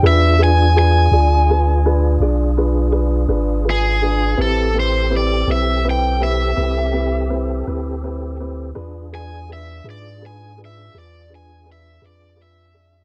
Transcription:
<<
  \new Staff \with { instrumentName = "Overdriven electric guitar" } { \time 12/8 \key e \phrygian \tempo 4. = 55 e''8 gis''8 gis''2. r4 gis'4 | a'8 c''8 d''8 e''8 g''8 e''2. r8 | r8 gis''8 e''8 d''8 gis''8 e''8 d''8 gis''8 e''8 d''8 e''4 | }
  \new Staff \with { instrumentName = "Upright piano" } { \time 12/8 \key e \phrygian <d' f' gis' b'>8 <d' f' gis' b'>8 <d' f' gis' b'>8 <d' f' gis' d''>8 <d' f' gis' b'>8 <d' f' gis' b'>8 <d' f' gis' d''>8 <d' f' gis' b'>8 <d' f' gis' b'>8 <d' f' gis' b'>8 <d' f' gis' b'>8 <d' f' gis' b'>8 | <c' e' g' b'>8 <c' e' g' b'>8 <c' e' g' b'>8 <c' e' g' b'>8 <c' e' g' b'>8 <c' e' g' b'>8 <c' e' g' b'>8 <c' e' g' b'>8 <c' e' g' b'>8 <c' e' g' b'>8 <c' e' g' b'>8 <c' e' g' b'>8 | <d' f' gis' b'>8 <d' f' gis' b'>8 <d' f' gis' b'>8 <d' f' gis' b'>8 <d' f' gis' b'>8 <d' f' gis' b'>8 <d' f' gis' b'>8 <d' f' gis' b'>8 <d' f' gis' b'>8 <d' f' gis' b'>8 <d' f' gis' b'>8 <d' f' gis' d''>8 | }
  \new Staff \with { instrumentName = "Tonewheel organ" } { \time 12/8 \key e \phrygian <d' f' gis'>1. | <c' g' a'>1. | <d' f' gis'>1. | }
  \new Staff \with { instrumentName = "Sub bass" } { \clef bass \time 12/8 \key e \phrygian e,4. d,4. b,,4. gis,,4. | a,,4. b,,4. c,4. d,4. | e,4. gis,4. e,4. f,4. | }
>>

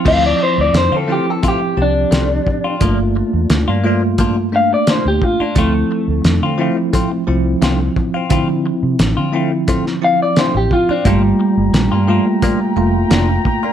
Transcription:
<<
  \new Staff \with { instrumentName = "Horn section" } { \time 4/4 \key d \minor \tempo 4 = 87 r1 | r1 | r1 | r1 |
<g'' bes''>1 | }
  \new Staff \with { instrumentName = "Clean electric guitar" } { \time 4/4 \key d \minor f''16 d''16 c''16 d''16 c''16 a'16 g'16 a'16 g'8 d'4.~ | d'4. r4 f''16 d''16 c''16 g'16 f'16 d'16 | a2. r4 | r2 r8 f''16 d''16 c''16 g'16 f'16 d'16 |
g2. r4 | }
  \new Staff \with { instrumentName = "Clean electric guitar" } { \time 4/4 \key d \minor <a c' f'>16 r4 <c' f'>16 <a c' f'>16 r16 <a c' f'>16 r8. <a c' f'>16 r8 <c' f'>16 | <f bes d' f'>16 r4 <bes d' f'>16 <f bes d' f'>16 r16 <f bes d' f'>16 r8. <f bes d' f'>16 r8 <bes d' f'>16 | <a c' f'>16 r4 <c' f'>16 <a c' f'>16 r16 <a c' f'>16 r8. <a c' f'>16 r8 <c' f'>16 | <a c' f'>16 r4 <c' f'>16 <a c' f'>16 r16 <a c' f'>16 r8. <a c' f'>16 r8 <c' f'>16 |
<f bes d' f'>16 r4 <bes d' f'>16 <f bes d' f'>16 r16 <f bes d' f'>16 r8. <f bes d' f'>16 r8 <bes d' f'>16 | }
  \new Staff \with { instrumentName = "Tine electric piano" } { \time 4/4 \key d \minor <f c' e'>4. <f c' e'>4 <f c' g'>4. | <a bes f'>4. <a bes f'>4 <a bes d'>4. | <f c' e'>4. <f c' e'>4 <f c' e'>4. | <f c' e'>4. <f c' e'>4 <f c' e'>4. |
<a bes f'>4. <a bes f'>4 <a bes f'>4. | }
  \new Staff \with { instrumentName = "Fingered electric bass" } { \clef bass \time 4/4 \key d \minor d,8 r16 d,16 f,16 d8 r8. c,8 c,8 r8 | g,,8. e,16 d,16 g,2 d,16 r8 | d,8 r16 d,16 f,16 d8 r8. c,8 c,8 r8 | d8. c16 a,,16 d2 a,,16 r8 |
g,,8 r16 g,,16 bes,,16 g,8 r8. f,,8 f,,8 r8 | }
  \new DrumStaff \with { instrumentName = "Drums" } \drummode { \time 4/4 <cymc bd>4 <hh sn>4 <hh bd>4 <hh sn>8 bd8 | <hh bd>4 <hh sn>4 <hh bd>4 <hh sn>8 bd8 | <hh bd>4 <hh sn>4 <hh bd>4 <hh sn>8 bd8 | <hh bd>4 <hh sn>4 <hh bd>16 sn8. <hh sn>8 bd8 |
<hh bd>4 <hh sn>4 <hh bd>4 <hh sn>8 bd8 | }
>>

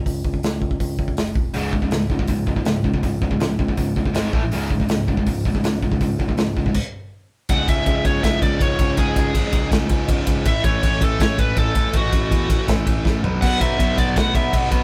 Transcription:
<<
  \new Staff \with { instrumentName = "Lead electric guitar" } { \time 4/4 \key cis \minor \tempo 4 = 162 r1 | r1 | r1 | r1 |
r1 | fis''8 e''4 cis''8 e''8 d''8 cis''4 | gis'2 r2 | e''8 cis''4 a'8 cis''8 b'8 a'4 |
fis'2 r2 | fis''8 e''4 d''8 fis''8 e''8 r4 | }
  \new Staff \with { instrumentName = "Distorted electric guitar" } { \clef bass \time 4/4 \key cis \minor r1 | <cis, gis, cis>8 <cis, gis,>16 <cis, gis,>16 <cis, gis,>8 <cis, gis,>16 <cis, gis,>16 <cis, gis,>8 <cis, gis,>16 <cis, gis,>16 <cis, gis,>8 <cis, gis,>16 <cis, gis,>16 | <cis, gis,>8 <cis, gis,>16 <cis, gis,>16 <cis, gis,>8 <cis, gis,>16 <cis, gis,>16 <cis, gis,>8 <cis, gis,>16 <cis, gis,>16 <gis, dis gis>8 <a, e a>16 <a, e>16 | <cis, gis, cis>8 <cis, gis,>16 <cis, gis,>16 <cis, gis,>8 <cis, gis,>16 <cis, gis,>16 <cis, gis,>8 <cis, gis,>16 <cis, gis,>16 <cis, gis,>8 <cis, gis,>16 <cis, gis,>16 |
<cis, gis,>8 <cis, gis,>16 <cis, gis,>16 <cis, gis,>8 <cis, gis,>16 <cis, gis,>16 r2 | <cis, gis, cis>8 <cis, gis, cis>8 <cis, gis, cis>8 <cis, gis, cis>8 <cis, gis, cis>8 <cis, gis, cis>8 <cis, gis, cis>8 <cis, gis, cis>8 | <cis, gis, cis>8 <cis, gis, cis>8 <cis, gis, cis>8 <cis, gis, cis>8 <cis, gis, cis>8 <cis, gis, cis>8 <cis, gis, cis>8 <cis, gis, cis>8 | <a, e a>8 <a, e a>8 <a, e a>8 <a, e a>8 <a, e a>8 <a, e a>8 <a, e a>8 <a, e a>8 |
<a, e a>8 <a, e a>8 <a, e a>8 <a, e a>8 <a, e a>8 <a, e a>8 <a, e a>8 <b, fis b>8 | <b, fis b>8 <b, fis b>8 <b, fis b>8 <b, fis b>8 <b, fis b>8 <b, fis b>8 <b, fis b>8 <b, fis b>8 | }
  \new Staff \with { instrumentName = "Distorted electric guitar" } { \clef bass \time 4/4 \key cis \minor r1 | <cis, gis, cis>8 <cis, gis,>16 <cis, gis,>16 <cis, gis,>8 <cis, gis,>16 <cis, gis,>16 <cis, gis,>8 <cis, gis,>16 <cis, gis,>16 <cis, gis,>8 <cis, gis,>16 <cis, gis,>16 | <cis, gis,>8 <cis, gis,>16 <cis, gis,>16 <cis, gis,>8 <cis, gis,>16 <cis, gis,>16 <cis, gis,>8 <cis, gis,>16 <cis, gis,>16 <gis, dis gis>8 <a, e a>16 <a, e>16 | <cis, gis, cis>8 <cis, gis,>16 <cis, gis,>16 <cis, gis,>8 <cis, gis,>16 <cis, gis,>16 <cis, gis,>8 <cis, gis,>16 <cis, gis,>16 <cis, gis,>8 <cis, gis,>16 <cis, gis,>16 |
<cis, gis,>8 <cis, gis,>16 <cis, gis,>16 <cis, gis,>8 <cis, gis,>16 <cis, gis,>16 r2 | r1 | r1 | r1 |
r1 | <b, fis b>8 <b, fis b>8 <b, fis b>8 <b, fis b>8 <b, fis b>8 <b, fis b>8 <b, fis b>8 <b, fis b>8 | }
  \new Staff \with { instrumentName = "Tine electric piano" } { \clef bass \time 4/4 \key cis \minor cis,8 cis,8 cis,8 cis,8 cis,8 cis,8 fis,,8 e,,8 | cis,4 cis,8 cis,8 cis,8 cis,8 cis,8 cis,8 | cis,8 cis,8 cis,8 cis,8 cis,8 cis,8 gis,,8 a,,8 | cis,4 cis,8 cis,8 cis,8 cis,8 cis,8 cis,8 |
cis,8 cis,8 cis,8 cis,8 r2 | cis,8 cis,8 cis,8 cis,8 cis,8 cis,8 cis,8 cis,8 | cis,8 cis,8 gis,,8 cis,8 cis,8 cis,8 cis,8 cis,8 | a,,8 a,,8 a,,8 a,,8 a,,8 a,,8 a,,8 a,8 |
a,,8 a,,8 e,8 a,,8 a,,8 a,,8 a,,8 b,,8 | b,,8 b,,8 b,,8 b,,8 b,,8 b,,8 b,,8 b,8 | }
  \new DrumStaff \with { instrumentName = "Drums" } \drummode { \time 4/4 <hho bd>8 bd16 bd16 <hho sn>8 bd16 bd16 <hho bd>8 bd16 bd16 <hho sn>8 bd8 | hho8 bd16 bd16 <hho sn>8 bd16 bd16 <hho bd>8 bd16 bd16 <hho sn>8 bd16 bd16 | <hho bd>8 bd16 bd16 <hho sn>8 bd16 bd16 <hho bd>8 bd16 bd16 <hho sn>8 bd8 | hho8 bd16 bd16 <hho sn>8 bd16 bd16 <hho bd>8 bd16 bd16 <hho sn>8 bd16 bd16 |
<hho bd>8 bd16 bd16 <hho sn>8 bd16 bd16 <cymc bd>4 r4 | <bd cymr>8 <bd cymr>8 <bd cymr>8 <bd cymr>8 <bd cymr sn>8 <bd cymr>8 <bd cymr>8 <bd cymr>8 | <bd cymr>8 <bd cymr>8 <bd cymr>8 <bd cymr>8 <bd cymr sn>8 <bd cymr>8 <bd cymr>8 <bd cymr>8 | <bd cymr>8 <bd cymr>8 <bd cymr>8 <bd cymr>8 <bd cymr sn>8 <bd cymr>8 <bd cymr>8 <bd cymr>8 |
<bd cymr>8 <bd cymr>8 <bd cymr>8 <bd cymr>8 <bd cymr sn>8 <bd cymr>8 <bd sn>8 tomfh8 | <cymc bd>8 <bd cymr>8 <bd cymr>8 <bd cymr>8 <bd cymr sn>8 <bd cymr>8 <bd cymr>8 <bd cymr>8 | }
>>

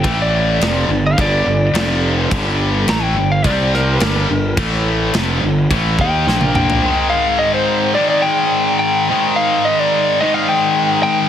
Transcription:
<<
  \new Staff \with { instrumentName = "Lead electric guitar" } { \time 4/4 \key aes \lydian \tempo 4 = 106 g''16 d''4. f''16 d''2 | r4 bes''16 g''8 f''16 d''8 bes'4. | r2 r8 g''4 g''8~ | g''8 f''8 ees''16 c''8. d''16 d''16 g''4 g''8~ |
g''8 f''8 ees''16 d''8. ees''16 f''16 g''4 g''8 | }
  \new Staff \with { instrumentName = "Distorted electric guitar" } { \clef bass \time 4/4 \key aes \lydian <a, e a>4 <f, c f>8 <g, d>8 <g, d g>8 <g, d>8 <f, c f>4 | <g, d g>4 <a, e a>8 <g, d>8 <c g c'>4 <g, d g>8 <g, d>8 | <a, e a>4 <f, c f>8 <g, d>8 <a, e a>8 <ees bes ees'>8 <bes, f bes>4 | <aes, ees aes>2 <aes, ees aes>2 |
<aes, ees aes>2 <aes, ees aes>2 | }
  \new Staff \with { instrumentName = "Fingered electric bass" } { \clef bass \time 4/4 \key aes \lydian a,,4 f,,8 g,,8 g,,8 g,,8 f,,4 | g,,4 a,,8 g,,8 c,4 g,,8 g,,8 | a,,4 f,,8 g,,8 a,,8 ees,8 bes,,4 | r1 |
r1 | }
  \new DrumStaff \with { instrumentName = "Drums" } \drummode { \time 4/4 <cymc bd>4 <cymc sn>4 <cymc bd>4 <cymc sn>4 | <cymc bd>4 <cymc sn>4 <cymc bd>8 sn8 <cymc sn>4 | <cymc bd>4 <cymc sn>4 <cymc bd>8 bd8 sn16 tommh16 toml16 tomfh16 | r4 r4 r4 r4 |
r4 r4 r4 r4 | }
>>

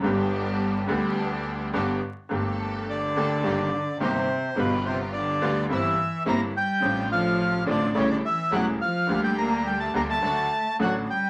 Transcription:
<<
  \new Staff \with { instrumentName = "Bandoneon" } { \time 4/4 \key g \major \tempo 4 = 106 r1 | \key g \minor r4 d''2 c''4 | b'8 c''8 d''4 e''4 bes''8 g''8~ | g''8 f''4 d''8 cis''16 d''16 e''8 fis''8 f''8~ |
f''16 g''16 bes''8 g''16 a''16 bes''16 a''4~ a''16 fis''8 g''8 | }
  \new Staff \with { instrumentName = "String section" } { \time 4/4 \key g \major <b d' g'>4. <b d' g'>4. <b d' g'>8 r8 | \key g \minor <g' a'>4. <bes g' a'>8 <bes ees' g'>8 r8 <bes ees' g'>8 r8 | <b f' g'>4. <b f' g'>8 <bes c' e'>8 r8 <bes c' e'>8 r8 | <a d' f'>4. <a d' f'>8 <a cis' g'>8 r8 <a cis' g'>8 r8 |
<bes d' g'>4. <bes d' g'>8 <a d' fis'>8 r8 <a d' fis'>8 r8 | }
  \new Staff \with { instrumentName = "Upright piano" } { \clef bass \time 4/4 \key g \major <g,, g, d g b g'>4. <d, d g b g'>4. <g,, g, d g b g'>8 r8 | \key g \minor <g,, g, d a bes g'>4. <d, d a bes g'>8 <g,, g, ees g bes g'>8 r8 <g,, g, ees g bes g'>8 r8 | <g,, g, d g b f'>4. <d, d g b f'>8 <g,, g, c g bes e'>8 r8 <g,, g, c g bes e'>8 r8 | <a,, a, c f a d'>4. <a,, a, c f a d'>8 <a,, a, cis g a e'>8 r8 <e,, e, cis g a e'>8 r8 |
<d, d g bes g'>4. <d, d g bes g'>8 <d, d fis a fis'>8 r8 <a,, a, d fis a fis'>8 r8 | }
  \new Staff \with { instrumentName = "Cello" } { \clef bass \time 4/4 \key g \major g2. r4 | \key g \minor r4 d2 c4 | b,8 c8 d4 e4 bes8 g8~ | g8 f4 d8 cis16 d16 e8 fis8 f8~ |
f16 g16 bes8 g16 a16 bes16 a4~ a16 fis8 g8 | }
  \new Staff \with { instrumentName = "Upright bass" } { \clef bass \time 4/4 \key g \major g,,4. d,4. g,,8 r8 | \key g \minor g,,4. d,8 g,,8 r8 g,,8 r8 | g,,4. d,8 g,,8 r8 g,,8 r8 | a,,4. a,,8 a,,8 r8 e,,8 r8 |
d,4. d,8 d,8 r8 a,,8 r8 | }
>>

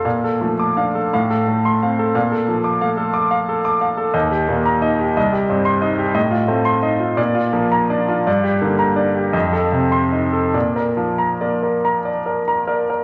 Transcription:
<<
  \new Staff \with { instrumentName = "Grand piano" } { \time 6/8 \key bes \lydian \tempo 4. = 57 f''16 a'16 f16 d'''16 f''16 a'16 f''16 a'8 c'''16 f''16 a'16 | f''16 a'16 f16 d'''16 f''16 a'16 d'''16 f''16 a'16 d'''16 f''16 a'16 | \key bes \major ees''16 g'16 bes,16 bes''16 ees''16 g'16 ees''16 g'16 g,16 c'''16 ees''16 g'16 | ees''16 f'16 a16 c'''16 ees''16 f'16 d''16 f'16 f16 bes''16 d''16 f'16 |
d''16 g'16 d16 bes''16 d''16 g'16 ees''16 a'16 c16 c'''16 ees''16 a'16 | d''16 bes'16 f16 bes''16 d''16 bes'16 bes''16 d''16 bes'16 bes''16 d''16 bes'16 | }
  \new Staff \with { instrumentName = "Grand piano" } { \time 6/8 \key bes \lydian bes,8 a8 d'8 a,8 a8 c'8 | bes,4 a4 r4 | \key bes \major ees,8 bes8 ees'8 c,8 c'8 ees'8 | a,8 c'8 ees'8 bes,8 bes8 d'8 |
g,8 bes8 d'8 f,8 c'8 ees'8 | bes,4 bes4 r8 bes'8 | }
>>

